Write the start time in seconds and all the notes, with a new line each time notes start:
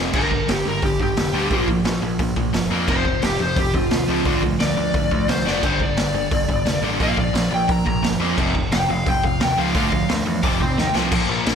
Already playing: F1 F2 C3 F3 A3 C4
0.13 G1 G2 D3 G3 A#4, kick, crash
0.31 G2 D3, kick
0.48 G1 G2 D3 G4, snare, open hi-hat
0.66 G1 G2 D3 A#4
0.82 G1 G2 D3 G4, kick, open hi-hat
1.00 G1 G2 D3 G4, kick
1.17 F1 G2 D3, snare, open hi-hat
1.34 D2 G2 D3 G3
1.51 A#1 A#2 F3 A#3, kick, open hi-hat
1.68 A#2 F3, kick
1.85 A#1 A#2 F3, snare, open hi-hat
2.02 A#1 A#2 F3
2.19 A#1 A#2 F3, kick, open hi-hat
2.36 A#1 A#2 F3, kick
2.53 G1 A#2 F3, snare, open hi-hat
2.70 F2 A#2 F3 A#3
2.87 F1 F2 C3 F3 C5, kick, crash
3.05 F2 C3, kick
3.22 F1 F2 C3 G4, snare, open hi-hat
3.39 F1 F2 C3 C5
3.56 F1 F2 C3 G4, kick, open hi-hat
3.74 F1 F2 C3 F4, kick
3.91 D#2 F2 C3, snare, open hi-hat
4.09 C#2 F2 C3 F3
4.25 D2 D3 F3 A3 D4, kick, open hi-hat
4.43 D3 F3 A3, kick
4.60 D2 D3 F3 A3 D5, snare, open hi-hat
4.77 D2 D3 F3 A3
4.94 D2 D3 F3 A3, kick, open hi-hat
5.11 D2 D3 F3 A3, kick
5.28 C2 D3 F3 A3 C5, snare, open hi-hat
5.45 F#1 D3 F3 A3 D4 D5, snare
5.62 G1 G2 D3 G3 C5, kick, crash, splash
5.80 G2 D3 D5, kick
5.97 G1 G2 D3, snare, open hi-hat
6.13 G1 G2 D3
6.31 G1 G2 D3, kick, open hi-hat
6.49 G1 G2 D3, kick
6.66 F1 G2 D3, snare, open hi-hat
6.82 A1 G2 D3 G3
7.00 A#1 A#2 F3 A#3 F5, kick, open hi-hat
7.17 A#2 F3 D5, kick
7.33 A#1 A#2 F3, snare, open hi-hat
7.51 A#1 A#2 F3 G5
7.68 A#1 A#2 F3 A#5, kick, open hi-hat
7.86 A#1 A#2 F3 A#5, kick
8.03 G1 A#2 F3, snare, open hi-hat
8.20 F2 A#2 F3 A#3
8.37 F1 F2 C3 F3, kick, crash
8.55 F2 C3, kick
8.72 F1 F2 C3 G5, snare, open hi-hat
8.89 F1 F2 C3 F5
9.06 F1 F2 C3 G5, kick, open hi-hat
9.23 F1 F2 C3 F5, kick
9.40 D#2 F2 C3 G5, snare, open hi-hat
9.57 C#2 F2 C3 F3 F5
9.74 D2 D3 F3 A3 D4 F5, kick, open hi-hat
9.92 D3 F3 A3, kick
10.09 D2 D3 F3 A3, snare, open hi-hat
10.26 E2 D3 F3 A3
10.43 F1 F2 C3 F3 D6, kick, open hi-hat
10.60 F1 F2 C3 C4 C5 C6, kick
10.77 D#2 F2 C3 D#4 D#5 G5, snare
10.94 C2 F2 C3 F3 F4 F5, snare
11.12 A#1 A#2 F3 A#3, kick, crash
11.29 A#1 A#2 F3 A#3
11.45 A#1 A#2 F3 A#3 D4 D5, snare, crash